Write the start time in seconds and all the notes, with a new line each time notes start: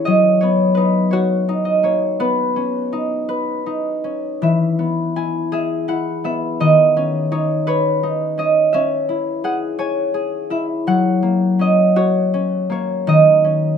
Already playing: E3 A#3 C#4 E4 G#4 C#5 E5
0.05 F#3 D#5
0.41 B3 C#5
0.75 D#4 B4
1.11 F#4 C#5
1.49 D#4
1.65 D#5
1.83 A#3 C#5
2.20 B3 B4
2.56 C#4
2.93 D#4
3.29 B4
3.66 D#4
4.04 C#4
4.42 E3 E5
4.79 B3
5.16 E4 G#5
5.52 G#4 E5
5.88 E4 F#5
6.24 B3 E5
6.60 D#3 D#5
6.97 C#4
7.32 D#4 C#5
7.67 B4 C#5
8.03 D#4
8.38 C#4 D#5
8.73 C#4 E5
9.09 E4
9.44 G#4 F#5
9.79 C#5 G#5
10.14 G#4
10.50 E4 E5
10.87 F#3 F#5
11.23 A#3
11.59 C#4 D#5
11.96 F#4 C#5
12.34 C#4
12.70 A#3 C#5
13.07 D#3 D#5
13.44 C#4